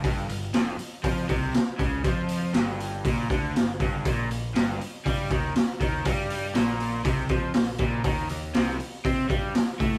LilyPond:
<<
  \new Staff \with { instrumentName = "Overdriven electric guitar" } { \clef bass \time 4/4 \key bes \major \tempo 4 = 120 g,8 g,8 f,8 r8 f8 c8 r8 cis8 | f4 g,4 bes,8 d8 g,8 g,8 | bes,8 bes,8 g,8 r8 g8 ees8 r8 ees8 | g4 bes,4 c8 f8 bes,8 bes,8 |
ees8 ees8 c8 r8 c'8 g8 r8 a8 | }
  \new Staff \with { instrumentName = "Picked electric bass" } { \clef bass \time 4/4 \key bes \major g,,8 g,,8 f,,8 r8 f,8 c,8 r8 cis,8 | f,4 g,,4 bes,,8 d,8 g,,8 g,,8 | bes,,8 bes,,8 g,,8 r8 g,8 ees,8 r8 ees,8 | g,4 bes,,4 c,8 f,8 bes,,8 bes,,8 |
ees,8 ees,8 c,8 r8 c8 g,8 r8 a,8 | }
  \new DrumStaff \with { instrumentName = "Drums" } \drummode { \time 4/4 <hho bd>8 hho8 <hho sn>8 hho8 <hho bd>8 <hho bd>8 <hho sn>8 <hho bd>8 | <hho bd>8 hho8 <hho sn>8 hho8 <hho bd>8 <hho bd>8 <hho sn>8 <hho bd>8 | <hho bd>8 hho8 <hho sn>8 hho8 <hho bd>8 <hho bd>8 <hho sn>8 <hho bd>8 | <hho bd>8 hho8 <hho sn>8 hho8 <hho bd>8 <hho bd>8 <hho sn>8 <hho bd>8 |
<hho bd>8 hho8 <hho sn>8 hho8 <hho bd>8 <hho bd>8 <hho sn>8 <hho bd>8 | }
>>